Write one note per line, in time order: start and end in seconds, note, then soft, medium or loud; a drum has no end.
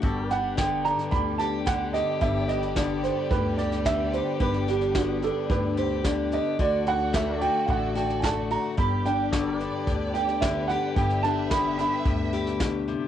0.00 0.90 G1 medium
0.00 1.11 G2 medium
0.00 0.56 D3 medium
0.00 6.55 G3 medium
0.00 0.24 F#4 medium
0.00 1.39 G4 medium
0.00 6.55 G4 medium
0.00 6.55 B4 medium
0.00 6.55 D5 medium
0.00 kick loud
0.00 snare soft
0.05 0.30 A4 medium
0.05 6.56 D5 medium
0.24 6.56 G4 medium
0.30 0.85 D4 medium
0.30 6.56 B4 medium
0.30 0.57 F#5 loud
0.30 snare soft
0.57 1.65 D3 medium
0.57 2.76 B3 medium
0.57 0.84 G5 medium
0.57 kick medium
0.57 snare loud
0.57 hi-hat pedal medium
0.85 1.67 D4 medium
0.85 1.12 A#5 loud
0.85 snare soft
0.99 snare soft
1.11 2.00 D2 medium
1.11 2.21 G2 medium
1.11 1.39 B5 loud
1.11 kick loud
1.11 snare soft
1.38 1.94 G4 medium
1.38 1.66 A5 medium
1.38 snare soft
1.66 2.75 D3 medium
1.66 2.49 D4 medium
1.66 1.94 F#5 medium
1.66 kick loud
1.66 snare loud
1.66 hi-hat pedal medium
1.93 2.22 G4 medium
1.93 2.21 D#5 medium
1.93 snare soft
2.21 3.09 G1 medium
2.21 3.31 G2 medium
2.21 3.58 G4 medium
2.21 2.48 E5 medium
2.21 kick loud
2.21 snare soft
2.49 3.04 D4 medium
2.49 2.75 D#5 medium
2.49 snare soft
2.63 snare soft
2.76 3.84 D3 medium
2.76 4.37 B3 medium
2.76 3.03 D5 medium
2.76 kick medium
2.76 snare loud
2.76 hi-hat pedal medium
3.03 3.86 D4 medium
3.03 3.30 C5 medium
3.03 snare soft
3.31 4.18 D2 medium
3.31 4.37 G2 medium
3.31 3.58 B4 medium
3.31 kick loud
3.31 snare soft
3.58 4.13 G4 medium
3.58 3.85 D5 medium
3.58 snare soft
3.72 snare soft
3.85 4.94 D3 medium
3.85 4.68 D4 medium
3.85 4.12 E5 loud
3.85 kick loud
3.85 snare loud
3.85 hi-hat pedal medium
4.13 4.38 G4 medium
4.13 4.40 C5 medium
4.13 snare soft
4.40 5.27 G1 medium
4.40 5.48 G2 medium
4.40 5.76 G4 medium
4.40 4.67 B4 medium
4.40 kick loud
4.40 snare soft
4.54 snare soft
4.68 5.23 D4 medium
4.68 4.95 G4 medium
4.68 snare soft
4.81 snare soft
4.95 6.03 D3 medium
4.95 6.56 B3 medium
4.95 5.22 F#4 medium
4.95 kick medium
4.95 snare loud
4.95 hi-hat pedal medium
5.22 6.05 D4 medium
5.22 5.49 A4 medium
5.22 snare soft
5.49 6.37 D2 medium
5.49 6.56 G2 medium
5.49 5.76 B4 medium
5.49 kick loud
5.49 snare soft
5.77 6.32 G4 medium
5.77 6.04 C5 medium
5.77 snare soft
6.04 6.58 D3 medium
6.04 7.14 D4 medium
6.04 6.31 D5 medium
6.04 kick medium
6.04 snare loud
6.04 hi-hat pedal medium
6.32 6.56 G4 medium
6.32 6.59 D#5 medium
6.32 snare soft
6.59 7.46 D2 medium
6.59 9.32 D3 medium
6.59 8.76 F#4 medium
6.59 6.86 F#4 medium
6.59 8.76 A4 medium
6.59 8.76 D5 medium
6.59 6.86 D5 medium
6.59 kick loud
6.59 snare soft
6.87 7.40 F#4 medium
6.87 7.14 F#5 loud
6.87 snare soft
7.13 8.21 A3 medium
7.13 9.06 D4 medium
7.13 7.34 G4 medium
7.13 7.39 B4 medium
7.13 8.77 D5 medium
7.13 7.41 E5 medium
7.13 kick medium
7.13 snare loud
7.13 hi-hat pedal medium
7.34 8.76 F#4 medium
7.39 7.94 F#4 medium
7.39 8.76 A4 medium
7.39 7.68 G5 loud
7.39 snare soft
7.65 8.55 A1 medium
7.65 8.77 A2 medium
7.65 7.69 F5 medium
7.65 kick loud
7.65 snare soft
7.70 7.96 F#5 medium
7.95 8.22 F#4 medium
7.95 8.22 G5 medium
7.95 snare soft
8.10 snare soft
8.20 8.74 A3 medium
8.20 8.49 F#4 medium
8.20 8.23 G#5 medium
8.20 kick medium
8.20 snare loud
8.20 hi-hat pedal medium
8.24 8.50 A5 medium
8.51 8.75 F#4 medium
8.51 8.77 A#5 medium
8.51 snare soft
8.77 9.65 G1 loud
8.77 9.87 G2 medium
8.77 13.08 G3 medium
8.77 10.14 G4 medium
8.77 13.08 G4 medium
8.77 13.08 B4 medium
8.77 10.94 D5 medium
8.77 9.04 B5 loud
8.77 kick loud
8.77 snare soft
9.05 9.60 D4 medium
9.05 9.22 G5 loud
9.05 snare soft
9.32 10.41 D3 medium
9.32 10.94 B3 medium
9.32 9.52 F#4 medium
9.32 9.58 A4 medium
9.32 13.08 D5 medium
9.32 kick medium
9.32 snare loud
9.32 hi-hat pedal medium
9.52 13.08 G4 medium
9.58 10.43 D4 medium
9.58 13.08 B4 medium
9.58 snare soft
9.87 10.74 D2 medium
9.87 10.93 G2 medium
9.87 kick loud
9.87 snare soft
10.14 10.69 G4 medium
10.14 10.41 G5 loud
10.14 snare soft
10.29 snare soft
10.41 11.49 D3 medium
10.41 11.24 D4 medium
10.41 10.68 E5 medium
10.41 kick medium
10.41 snare loud
10.41 hi-hat pedal medium
10.68 10.94 G4 medium
10.68 10.95 F#5 loud
10.68 snare soft
10.96 11.83 G1 medium
10.96 12.05 G2 medium
10.96 12.32 G4 medium
10.96 13.08 E5 medium
10.96 11.22 G5 medium
10.96 kick loud
10.96 snare soft
11.10 snare soft
11.23 11.78 D4 medium
11.23 11.50 A5 loud
11.23 snare soft
11.50 13.08 D3 medium
11.50 13.08 B3 medium
11.50 11.77 B5 loud
11.50 kick medium
11.50 snare loud
11.50 hi-hat pedal medium
11.78 13.08 D4 medium
11.78 13.08 B5 loud
11.78 snare soft
12.05 12.92 D2 medium
12.05 13.08 G2 medium
12.05 kick loud
12.05 snare soft
12.33 13.08 G4 medium
12.33 snare soft
12.47 snare soft
12.60 12.87 B2 medium
12.60 kick medium
12.60 snare loud
12.60 hi-hat pedal medium
12.88 13.08 C3 medium
12.88 snare soft